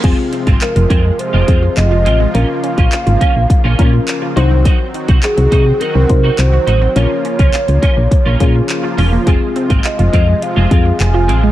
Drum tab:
CC |x---------------|----------------|----------------|----------------|
HH |x-xxxxx-x-x-x-x-|x-xxxxx-x-x-x-x-|x-xxxxx-x-x-x-x-|x-xxxxx-x-x-x-o-|
CP |----x-------x---|----x-------x---|----x-------x---|----x-------x---|
BD |o--o--o---o-----|---o--o-o-o-----|o--o--o---o-----|---o--o-o-o-----|

CC |----------------|
HH |x-xxxxx-x-x-x-x-|
CP |----x-------x---|
BD |o--o--o---o-----|